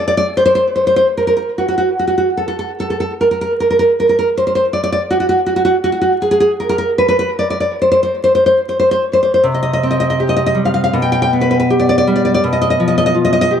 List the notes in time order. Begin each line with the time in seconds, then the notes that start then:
0.08 D5
0.17 D5
0.37 C5
0.46 C5
0.55 C5
0.76 C5
0.87 C5
0.96 C5
1.17 A#4
1.27 A#4
1.37 A#4
1.58 F#4
1.68 F#4
1.78 F#4
1.99 F#4
2.07 F#4
2.18 F#4
2.37 A4
2.48 A4
2.59 A4
2.80 A4
2.90 A4
3.00 A4
3.21 A#4
3.31 A#4
3.41 A#4
3.60 A#4
3.71 A#4
3.79 A#4
4.00 A#4
4.09 A#4
4.19 A#4
4.37 C5
4.47 C5
4.55 C5
4.73 D5
4.83 D5
4.92 D5
5.11 F#4
5.20 F#4
5.29 F#4
5.46 F#4
5.56 F#4
5.65 F#4
5.84 F#4
5.92 F#4
6.01 F#4
6.22 G#4
6.31 G#4
6.40 G#4
6.60 A#4
6.69 A#4
6.78 A#4
6.98 B4
7.08 B4
7.19 B4
7.39 D5
7.50 D5
7.60 D5
7.82 C5
7.92 C5
8.03 C5
8.24 C5
8.35 C5
8.46 C5
8.69 C5
8.80 C5
8.91 C5
9.13 C5
9.23 C5
9.34 C5
9.44 C3
9.54 D#5
9.63 D#5
9.73 D#5
9.83 C4
9.91 D#5
10.00 D#5
10.10 D#5
10.20 G4
10.29 D#5
10.37 D#5
10.46 D#5
10.55 G3
10.65 F5
10.74 F5
10.84 F5
10.93 B2
11.02 G5
11.12 G5
11.22 G5
11.33 B3
11.41 B4
11.51 B4
11.60 B4
11.70 G4
11.79 D5
11.89 D5
11.98 D5
12.07 G3
12.16 D5
12.25 D5
12.34 D5
12.44 B2
12.53 D#5
12.62 D#5
12.70 D#5
12.80 F3
12.88 D#5
12.98 D#5
13.06 D#5
13.15 F4
13.25 D#5
13.33 D#5
13.41 D#5
13.51 G4